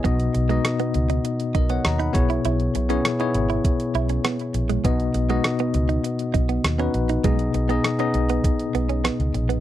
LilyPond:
<<
  \new Staff \with { instrumentName = "Tine electric piano" } { \time 4/4 \key b \major \tempo 4 = 100 << { r2 r8 <ais' dis''>16 <cis'' fis''>16 <dis'' ais''>16 <fis'' b''>8 r16 | r1 | r1 | r1 | } \\ { <b dis' fis' dis''>8 r16 <b dis' fis' dis''>4~ <b dis' fis' dis''>16 r4. <b e' gis' cis''>8~ | <b e' gis' cis''>8 r16 <b e' gis' cis''>16 r16 <b e' gis' cis''>4~ <b e' gis' cis''>16 r4. | <b dis' fis' dis''>8 r16 <b dis' fis' dis''>4~ <b dis' fis' dis''>16 r4 r16 <b dis' fis' b'>8 r16 | <b dis' gis' dis''>8 r16 <b dis' gis' dis''>16 r16 <b dis' gis' dis''>4~ <b dis' gis' dis''>16 r4. | } >> }
  \new Staff \with { instrumentName = "Tine electric piano" } { \clef bass \time 4/4 \key b \major b,4. r2 b,8~ | b,4 r2. | b,4. r2 r8 | b,4. r2 r8 | }
  \new Staff \with { instrumentName = "Clean electric guitar" } { \time 4/4 \key b \major b16 r8 gis16 r16 b16 r16 dis'16 r8 dis'16 b16 r16 dis'16 r16 e'16 | e'16 r8 cis'16 r16 dis'16 r16 e'16 r8 e'16 cis'16 b16 r8 gis16 | b16 r8 gis16 r16 b16 r16 dis'16 r8 dis'16 b16 r16 cis'16 r16 dis'16 | gis16 r8 b16 r16 cis'16 r16 b16 r8 b16 cis'16 b16 r8 b16 | }
  \new Staff \with { instrumentName = "Fingered electric bass" } { \clef bass \time 4/4 \key b \major b,,8 b,,8 r8 cis,8 r8 b,,8 dis,8 b,,8 | b,,8 b,,8 r8 gis,,8 r8 b,,8 r8 ais,,8 | b,,8 b,,8 r8 cis,8 r8 b,,8 dis,8 ais,,8 | b,,8 b,,8 r8 b,,8 b,8 b,,8. cis,16 ais,,8 | }
  \new DrumStaff \with { instrumentName = "Drums" } \drummode { \time 4/4 <hh bd>16 hh16 hh16 hh16 <hh ss>16 hh16 hh16 hh16 hh16 hh16 <hh bd>16 hh16 <hh ss>16 hh16 <hh bd>16 hh16 | hh16 hh16 hh16 hh16 <hh ss>16 hh16 hh16 hh16 <hh bd>16 hh16 hh16 hh16 <hh ss>16 hh16 hh16 hh16 | <hh bd>16 hh16 hh16 hh16 <hh ss>16 hh16 hh16 hh16 hh16 hh16 <hh bd>16 hh16 <hh ss>16 hh16 hh16 hh16 | <hh bd>16 hh16 hh16 hh16 <hh ss>16 hh16 hh16 hh16 <hh bd>16 hh16 hh16 hh16 <hh ss>16 hh16 hh16 hh16 | }
>>